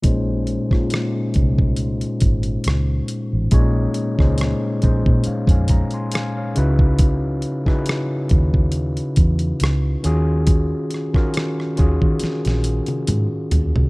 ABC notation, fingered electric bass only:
X:1
M:4/4
L:1/16
Q:"Swing 16ths" 1/4=69
K:Bbm
V:1 name="Fingered electric bass" clef=bass
B,,,3 z3 C,,4 A,,,2 D,,2 z =A,,, | B,,,2 z D,,2 z B,,, B,, z F,,2 z3 D,,2- | D,,3 z3 E,,4 _F,,2 D,,2 E,,2- | E,,2 z4 E,, E, z B,,,2 z A,, z E,, C,, |]